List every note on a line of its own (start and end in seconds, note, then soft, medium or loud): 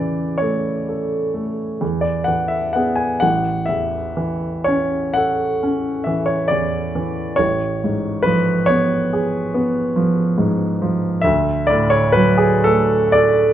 0.00 1.78 E2 medium
0.00 0.23 C#3 soft
0.00 0.70 E3 soft
0.00 0.40 D5 medium
0.38 1.16 A3 soft
0.38 1.80 C#5 medium
0.89 1.63 A4 soft
1.34 1.81 A3 soft
1.81 3.19 E2 soft
2.01 2.27 D5 medium
2.24 3.04 E3 soft
2.24 2.50 F#5 medium
2.48 2.74 E5 medium
2.73 3.19 B3 soft
2.73 3.19 G#4 soft
2.73 2.98 F#5 medium
2.96 3.21 G#5 medium
3.20 7.36 A1 medium
3.20 3.68 F#5 medium
3.66 4.48 E2 soft
3.66 4.67 E5 medium
4.17 4.98 E3 soft
4.64 5.45 C#4 soft
4.64 5.16 C#5 medium
5.14 5.89 A4 soft
5.14 6.05 F#5 medium
5.63 6.34 C#4 soft
6.04 6.78 E3 soft
6.04 6.28 E5 medium
6.26 6.50 C#5 medium
6.48 7.23 E2 soft
6.48 7.39 D5 medium
6.95 7.40 E3 soft
7.36 11.20 A1 medium
7.36 8.25 C#5 medium
7.84 8.53 G#2 soft
8.23 8.95 F3 medium
8.23 8.68 B4 medium
8.66 9.37 B3 medium
8.66 11.23 C#5 medium
9.13 9.80 G#4 medium
9.54 10.21 B3 medium
9.96 10.64 F3 medium
10.38 11.07 G#2 medium
10.82 11.25 F3 medium
11.21 13.53 D2 medium
11.21 11.68 E5 medium
11.67 12.46 A2 medium
11.67 11.91 D5 medium
11.90 12.15 C#5 medium
12.12 12.95 F#3 medium
12.12 12.39 B4 medium
12.38 12.64 G#4 medium
12.64 13.44 A3 medium
12.64 13.14 A4 medium
13.12 13.53 A4 medium
13.12 13.53 D5 medium